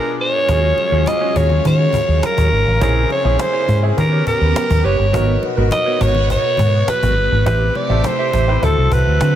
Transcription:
Already playing: string machine B2 G#3 D4, grand piano B3 D4 F4 G#4, alto saxophone A#4
0.21 alto saxophone C#5
0.48 fingered electric bass D#2, string machine C#3 F#3 G#3 F5, grand piano C#4 F4 F#4 G#4, clean electric guitar F#4 G#4 C#5, cajon bass, muted conga
0.63 muted clean electric guitar stroke
0.77 muted clean electric guitar stroke, cajon slap, muted conga
0.92 fingered electric bass D#2, grand piano C#4 F4 F#4 G#4, clean electric guitar F#4 G#4 C#5, cajon slap
1.06 alto saxophone D#5, cajon slap, high conga
1.20 grand piano C#4 F4 F#4 G#4, clean electric guitar F#4 G#4 C#5
1.35 fingered electric bass D#2, clean electric guitar F#4 G#4 C#5, alto saxophone C#5, cajon bass
1.50 muted clean electric guitar stroke, low conga
1.65 fingered electric bass D#3, alto saxophone C#5, muted clean electric guitar stroke, cajon bass, muted conga
1.80 muted clean electric guitar stroke
1.93 cajon bass, low conga
2.08 fingered electric bass D#2, muted clean electric guitar stroke, cajon slap
2.23 alto saxophone A#4, muted clean electric guitar stroke, cajon slap, high conga
2.37 fingered electric bass D#2, clean electric guitar F#4 G#4 C#5, cajon bass, high conga
2.52 fingered electric bass G#1, muted clean electric guitar stroke
2.66 fingered electric bass A1, muted clean electric guitar stroke
2.80 fingered electric bass A#1, string machine A#3 G#4, grand piano C4 C#4 E4 G#4, clean electric guitar E4 G#4 C#5, alto saxophone A#4, cajon bass, muted conga
2.95 muted clean electric guitar stroke
3.10 alto saxophone C#5, muted clean electric guitar stroke, cajon slap, muted conga
3.24 fingered electric bass A#1, grand piano C4 C#4 E4 G#4, clean electric guitar E4 G#4 C#5, cajon slap
3.39 alto saxophone C5, muted clean electric guitar stroke, cajon slap, high conga
3.53 clean electric guitar E4 G#4 C#5
3.68 fingered electric bass G#2, clean electric guitar E4 G#4 C#5, cajon bass
3.82 grand piano C4 C#4 E4 G#4, muted clean electric guitar stroke
3.96 fingered electric bass D#3, string machine B3 G4, grand piano B3 C#4 G4 A#4, alto saxophone A#4, muted clean electric guitar stroke, cajon bass, muted conga, low conga
4.12 clean electric guitar G4 B4 C#5
4.27 alto saxophone A#4, muted clean electric guitar stroke, cajon bass
4.41 fingered electric bass D#2, muted clean electric guitar stroke
4.55 muted clean electric guitar stroke, cajon slap, high conga
4.70 fingered electric bass D#2, cajon bass, high conga
4.84 fingered electric bass F#1, clean electric guitar G4 B4 C#5, alto saxophone C#5
4.99 fingered electric bass G1, muted clean electric guitar stroke
5.13 fingered electric bass G#1, string machine B2 B3 F#4, clean electric guitar B3 F#4 A#4, grand piano B3 D#4 F#4 A#4, cajon bass, muted conga
5.28 muted clean electric guitar stroke
5.42 muted clean electric guitar stroke, cajon slap, muted conga
5.56 fingered electric bass G#1, grand piano B3 D#4 F#4 A#4, clean electric guitar B3 F#4 A#4, cajon slap
5.71 alto saxophone D#5, cajon slap, high conga
5.85 grand piano B3 D#4 F#4 C#5, clean electric guitar B3 F#4 A#4
6.00 fingered electric bass G#1, clean electric guitar B3 F#4 A#4, alto saxophone C#5, cajon bass
6.15 muted clean electric guitar stroke, low conga
6.30 alto saxophone C#5, muted clean electric guitar stroke, cajon bass
6.44 muted clean electric guitar stroke
6.57 fingered electric bass G#2, cajon bass, low conga
6.73 muted clean electric guitar stroke, cajon slap
6.88 alto saxophone B4, muted clean electric guitar stroke, cajon slap, high conga
7.02 fingered electric bass G#1, clean electric guitar B3 F#4 A#4, cajon bass, high conga
7.17 fingered electric bass G1, muted clean electric guitar stroke, cajon slap
7.32 fingered electric bass G#1, muted clean electric guitar stroke
7.46 fingered electric bass A1, string machine C3 A3 G4, grand piano C4 E4 G4 B4, clean electric guitar G4 C5 E5, alto saxophone B4, cajon bass, muted conga
7.61 muted clean electric guitar stroke
7.75 alto saxophone D5, muted clean electric guitar stroke, cajon slap, muted conga
7.89 fingered electric bass A1, grand piano C4 E4 G4 A4, clean electric guitar G4 C5 E5, cajon slap
8.04 alto saxophone C5, muted clean electric guitar stroke, cajon slap, high conga
8.19 clean electric guitar G4 C5 E5
8.33 fingered electric bass A1, clean electric guitar G4 C5 E5, cajon bass
8.48 grand piano C4 E4 G4 B4, muted clean electric guitar stroke
8.62 fingered electric bass D2, string machine E3 C4 F#4, grand piano C4 E4 F#4 A4, alto saxophone A4, muted clean electric guitar stroke, cajon bass, muted conga, low conga
8.77 fingered electric bass C2, muted clean electric guitar stroke
8.92 fingered electric bass C2, alto saxophone B4, cajon bass
9.06 fingered electric bass D2, muted clean electric guitar stroke
9.21 fingered electric bass D3, cajon slap, high conga

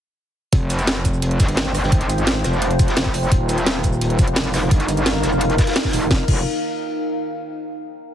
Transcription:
0.53 wobble bass F1, ambient pad F4 C5 G5, kick, closed hi-hat
0.70 closed hi-hat, cabasa
0.79 closed hi-hat, cabasa
0.87 snare, closed hi-hat
1.05 kick, closed hi-hat, cabasa
1.14 cabasa
1.22 closed hi-hat
1.31 closed hi-hat
1.39 wobble bass G1, kick, snare, closed hi-hat, open hi-hat, cabasa
1.49 closed hi-hat
1.57 snare, closed hi-hat
1.67 snare
1.74 cross-stick, closed hi-hat, open hi-hat, cabasa
1.83 snare, cabasa
1.92 wobble bass G#1, kick, closed hi-hat
2.01 closed hi-hat
2.10 closed hi-hat, cabasa
2.18 closed hi-hat, cabasa
2.27 snare, closed hi-hat
2.36 snare
2.44 wobble bass F1, cross-stick, snare, closed hi-hat, cabasa
2.53 cabasa
2.62 closed hi-hat
2.70 closed hi-hat
2.79 kick, closed hi-hat, cabasa
2.88 snare, closed hi-hat
2.96 wobble bass F1, snare, closed hi-hat
3.06 kick, snare
3.14 closed hi-hat, open hi-hat, cabasa
3.23 cabasa
3.32 wobble bass D#1, ambient pad D#4 A#4 F5, kick, closed hi-hat
3.49 closed hi-hat, cabasa
3.58 closed hi-hat, cabasa
3.66 snare, closed hi-hat
3.83 kick, closed hi-hat, cabasa
3.93 cabasa
4.01 closed hi-hat
4.10 closed hi-hat
4.18 wobble bass F1, kick, closed hi-hat, cabasa
4.28 closed hi-hat
4.36 snare, closed hi-hat, open hi-hat
4.54 cross-stick, snare, closed hi-hat, open hi-hat, cabasa
4.62 snare, cabasa
4.71 wobble bass G1, kick, closed hi-hat
4.80 closed hi-hat
4.89 closed hi-hat, cabasa
4.97 closed hi-hat, cabasa
5.06 snare, closed hi-hat
5.15 snare
5.23 wobble bass F1, cross-stick, snare, closed hi-hat, cabasa
5.32 cabasa
5.41 closed hi-hat
5.50 closed hi-hat
5.58 kick, snare, closed hi-hat, cabasa
5.67 snare, closed hi-hat
5.71 snare, closed hi-hat
5.76 snare, closed hi-hat
5.84 kick, snare, closed hi-hat
5.89 snare, closed hi-hat
5.93 wobble bass D#1, closed hi-hat, open hi-hat, cabasa
6.02 cabasa
6.11 wobble bass F1, kick, snare
6.28 wobble bass F1, kick, crash

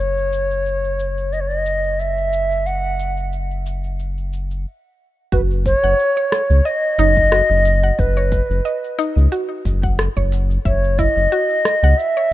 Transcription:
Already playing: ney C#5
0.00 analog synth bass F#1
0.17 cabasa
0.33 cabasa
0.51 cabasa
0.66 cabasa
0.84 cabasa
1.00 cabasa
1.18 cabasa
1.33 ney D#5, cabasa
1.40 ney C#5
1.48 ney D#5, cabasa
1.66 cabasa
1.84 cabasa
2.00 ney E5, cabasa
2.18 cabasa
2.33 cabasa
2.51 cabasa
2.66 ney F#5, cabasa
2.84 cabasa
2.99 cabasa
3.17 cabasa
3.33 cabasa
3.51 cabasa
3.66 cabasa
3.84 cabasa
3.99 cabasa
4.18 cabasa
4.33 cabasa
4.51 cabasa
5.32 analog synth bass F#1, synth pluck F#4, ney B4, kick, cabasa
5.51 cabasa
5.66 ney C#5, kick, closed hi-hat, cabasa
5.83 analog synth bass F#1, synth pluck F#5, cabasa
5.99 cabasa
6.17 synth pluck C#5, cabasa
6.32 cross-stick, closed hi-hat, cabasa
6.50 analog synth bass C#2, cabasa
6.65 synth pluck D#5, ney D#5, cabasa
6.98 analog synth bass F#1, synth pluck D#4, closed hi-hat, cabasa
7.17 kick, cabasa
7.32 synth pluck F#4, cross-stick, cabasa
7.50 analog synth bass F#1, cabasa
7.65 closed hi-hat, cabasa
7.83 synth pluck F#5, cabasa
7.99 analog synth bass F#1, ney B4, kick, cabasa
8.17 synth pluck C#5, cabasa
8.32 kick, closed hi-hat, cabasa
8.50 analog synth bass F#1, cabasa
8.65 synth pluck D#5, cabasa
8.84 cabasa
8.99 synth pluck D#4, closed hi-hat, cabasa
9.16 analog synth bass C#2, cabasa
9.32 synth pluck F#4, cabasa
9.65 analog synth bass F#1, kick, closed hi-hat, cabasa
9.83 synth pluck F#5, kick, cabasa
9.99 cross-stick, cabasa
10.17 analog synth bass F#1, synth pluck C#5, kick, cabasa
10.32 closed hi-hat, cabasa
10.51 cabasa
10.65 analog synth bass F#1, ney C#5, synth pluck E5, kick, cabasa
10.84 cabasa
10.99 synth pluck E4, ney D#5, kick, closed hi-hat, cabasa
11.16 analog synth bass F#1, cabasa
11.32 synth pluck F#4, cabasa
11.51 cabasa
11.65 cross-stick, closed hi-hat, cabasa
11.83 analog synth bass C#2, synth pluck F#5, cabasa
11.98 ney E5, cabasa
12.17 synth pluck C#5

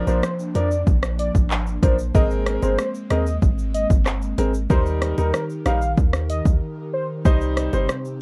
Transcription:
Already playing: analog synth pad F3 A#3 D4, downlifter
0.07 808-style bass A#1, grand piano F3 D4 A#4, soft synth lead C5, high bongo, shaker
0.23 cross-stick, high bongo, shaker
0.39 shaker
0.55 808-style bass F2, grand piano F3 D4 A#4, soft synth lead D5, closed hi-hat, low bongo, shaker
0.71 shaker
0.87 808-style bass A#1, kick, shaker
1.03 cross-stick, shaker
1.19 soft synth lead D5, closed hi-hat, shaker
1.35 808-style bass G#1, kick, shaker
1.51 clap, shaker
1.67 shaker
1.83 808-style bass A#1, grand piano F3 D4 A#4, soft synth lead C5, kick, closed hi-hat, high bongo, low bongo, shaker
1.99 shaker
2.15 808-style bass G#1, grand piano G#3 C4 A#4, analog synth pad G#3 C4, soft synth lead D#5, kick, shaker
2.31 shaker
2.46 cross-stick, closed hi-hat, shaker
2.62 808-style bass G1, grand piano G#3 C4 A#4, soft synth lead C5, high bongo, shaker
2.79 cross-stick, high bongo, shaker
2.95 shaker
3.10 808-style bass D#2, grand piano G#3 C4 A#4, soft synth lead D#5, cross-stick, closed hi-hat, low bongo, shaker
3.26 shaker
3.42 808-style bass G#1, kick, shaker
3.59 shaker
3.74 soft synth lead D#5, closed hi-hat, shaker
3.90 808-style bass G1, kick, shaker
4.06 cross-stick, clap, shaker
4.22 shaker
4.38 808-style bass G#1, grand piano G#3 C4 A#4, closed hi-hat, high bongo, low bongo, shaker
4.54 shaker
4.70 808-style bass D#2, analog synth pad D#3 D#4 G4 A#4, grand piano G3 D#4 A#4, soft synth lead C5, kick, shaker
4.86 shaker
5.02 cross-stick, closed hi-hat, shaker
5.18 808-style bass D#2, grand piano G3 D#4 A#4, soft synth lead A#4, high bongo, shaker
5.34 cross-stick, high bongo, shaker
5.50 shaker
5.66 808-style bass A#1, grand piano G3 D#4 A#4, soft synth lead F5, cross-stick, closed hi-hat, low bongo, shaker
5.82 shaker
5.97 808-style bass D#2, kick, shaker
6.13 cross-stick, shaker
6.30 soft synth lead D#5, closed hi-hat, shaker
6.45 808-style bass D2, kick, shaker
6.93 soft synth lead C5
7.25 808-style bass C2, analog synth pad C3 C4 G4, grand piano G3 D#4 C5, soft synth lead D#5, kick, shaker
7.41 shaker
7.57 cross-stick, closed hi-hat, shaker
7.73 808-style bass G1, grand piano G3 D#4 C5, soft synth lead C5, high bongo, shaker
7.89 cross-stick, high bongo, shaker
8.05 shaker

